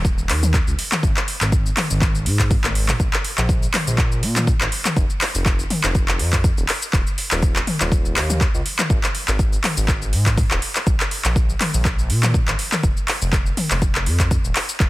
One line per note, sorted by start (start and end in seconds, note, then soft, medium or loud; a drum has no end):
0.00 0.31 D#1 loud
0.05 kick loud
0.05 shaker medium
0.18 shaker soft
0.29 0.59 D#2 medium
0.29 clap medium
0.29 open hi-hat medium
0.43 mid tom medium
0.43 shaker medium
0.54 kick loud
0.54 clap medium
0.54 shaker medium
0.67 0.74 C#2 medium
0.67 shaker soft
0.79 open hi-hat medium
0.92 clap medium
0.92 mid tom medium
0.92 shaker medium
1.03 1.11 G#1 loud
1.03 kick loud
1.03 shaker medium
1.17 clap medium
1.17 shaker soft
1.28 open hi-hat loud
1.41 1.70 G#1 medium
1.41 clap medium
1.41 shaker medium
1.52 kick loud
1.52 shaker medium
1.66 shaker soft
1.77 clap medium
1.77 open hi-hat loud
1.77 mid tom medium
1.90 2.28 G#1 loud
1.90 shaker medium
2.01 kick loud
2.01 clap medium
2.01 mid tom medium
2.01 shaker medium
2.15 shaker soft
2.26 2.56 G#2 medium
2.26 open hi-hat medium
2.39 kick medium
2.39 clap loud
2.39 shaker medium
2.51 kick loud
2.51 open hi-hat medium
2.51 high tom medium
2.51 shaker medium
2.64 2.93 G#1 loud
2.64 clap medium
2.64 high tom medium
2.64 shaker soft
2.75 open hi-hat medium
2.89 clap medium
2.89 mid tom medium
2.89 shaker medium
3.00 3.08 A#1 loud
3.00 kick loud
3.00 shaker medium
3.13 clap medium
3.13 shaker soft
3.24 open hi-hat loud
3.38 3.67 A#1 medium
3.38 clap medium
3.38 shaker medium
3.49 kick loud
3.49 shaker medium
3.63 shaker soft
3.74 clap loud
3.74 open hi-hat loud
3.74 mid tom medium
3.87 4.24 A#1 loud
3.87 shaker medium
3.98 kick loud
3.98 clap medium
3.98 shaker medium
4.12 shaker soft
4.23 4.53 A#2 medium
4.23 open hi-hat loud
4.36 clap loud
4.36 mid tom loud
4.36 shaker medium
4.47 kick loud
4.47 shaker medium
4.61 4.68 G#1 medium
4.61 clap loud
4.61 shaker soft
4.72 open hi-hat loud
4.85 clap medium
4.85 mid tom medium
4.85 shaker medium
4.97 5.05 F1 loud
4.97 kick loud
4.97 shaker medium
5.10 shaker soft
5.21 clap loud
5.21 open hi-hat medium
5.35 5.64 F1 loud
5.35 shaker medium
5.46 kick loud
5.46 clap medium
5.46 shaker medium
5.59 shaker soft
5.70 open hi-hat medium
5.70 mid tom medium
5.84 6.21 F1 loud
5.84 clap loud
5.84 shaker medium
5.95 kick loud
5.95 shaker medium
6.08 clap medium
6.08 shaker soft
6.19 6.50 F2 medium
6.19 open hi-hat medium
6.33 kick medium
6.33 clap medium
6.33 shaker medium
6.44 kick loud
6.44 shaker medium
6.58 6.65 D#1 medium
6.58 shaker soft
6.69 clap medium
6.69 open hi-hat medium
6.82 shaker medium
6.93 7.02 D#1 loud
6.93 kick loud
6.93 clap medium
6.93 shaker medium
7.07 shaker soft
7.18 open hi-hat medium
7.31 7.60 D#1 loud
7.31 clap medium
7.31 shaker medium
7.42 kick loud
7.42 shaker medium
7.56 clap loud
7.56 shaker soft
7.67 open hi-hat medium
7.67 mid tom medium
7.81 8.18 D#1 loud
7.81 clap medium
7.81 shaker medium
7.92 kick loud
7.92 shaker medium
8.05 shaker soft
8.16 8.46 D#2 medium
8.16 clap loud
8.16 open hi-hat medium
8.30 mid tom medium
8.30 shaker medium
8.41 kick loud
8.41 clap medium
8.41 shaker medium
8.54 8.61 C#2 medium
8.54 shaker soft
8.66 open hi-hat medium
8.79 clap loud
8.79 mid tom medium
8.79 shaker medium
8.90 8.98 G#1 loud
8.90 kick loud
8.90 shaker medium
9.04 clap medium
9.04 shaker soft
9.15 open hi-hat medium
9.28 9.57 G#1 medium
9.28 clap medium
9.28 shaker medium
9.39 kick loud
9.39 shaker medium
9.53 shaker soft
9.64 clap medium
9.64 open hi-hat medium
9.64 mid tom medium
9.77 10.15 G#1 loud
9.77 shaker medium
9.88 kick loud
9.88 clap medium
9.88 shaker medium
10.02 shaker soft
10.13 10.43 G#2 medium
10.13 open hi-hat medium
10.26 kick medium
10.26 clap medium
10.26 shaker medium
10.38 kick loud
10.38 open hi-hat medium
10.38 shaker medium
10.51 10.58 D#1 medium
10.51 clap medium
10.51 shaker soft
10.62 open hi-hat medium
10.76 clap medium
10.76 shaker medium
10.87 10.95 A#1 loud
10.87 kick loud
10.87 shaker medium
11.00 clap medium
11.00 shaker soft
11.11 open hi-hat medium
11.25 11.54 A#1 medium
11.25 clap medium
11.25 shaker medium
11.36 kick loud
11.36 shaker medium
11.49 shaker soft
11.61 clap medium
11.61 open hi-hat medium
11.61 mid tom medium
11.74 12.11 A#1 loud
11.74 shaker medium
11.85 kick loud
11.85 clap medium
11.85 shaker medium
11.99 shaker soft
12.10 12.40 A#2 medium
12.10 open hi-hat medium
12.23 clap medium
12.23 mid tom medium
12.23 shaker medium
12.34 kick loud
12.34 shaker medium
12.48 12.55 G#1 medium
12.48 clap medium
12.48 shaker soft
12.59 open hi-hat medium
12.72 clap medium
12.72 mid tom medium
12.72 shaker medium
12.83 12.92 F1 loud
12.83 kick loud
12.83 shaker medium
12.97 shaker soft
13.08 clap medium
13.08 open hi-hat medium
13.22 13.51 F1 loud
13.22 shaker medium
13.33 kick loud
13.33 clap medium
13.33 shaker medium
13.46 shaker soft
13.57 open hi-hat medium
13.57 mid tom medium
13.71 14.08 F1 loud
13.71 clap medium
13.71 shaker medium
13.82 kick loud
13.82 shaker medium
13.95 clap medium
13.95 shaker soft
14.06 14.36 F2 medium
14.06 open hi-hat medium
14.20 kick medium
14.20 clap medium
14.20 shaker medium
14.31 kick loud
14.31 shaker medium
14.44 14.51 D#1 medium
14.44 shaker soft
14.56 clap medium
14.56 open hi-hat medium
14.69 shaker medium
14.80 14.89 D#1 loud
14.80 kick loud
14.80 clap medium
14.80 shaker medium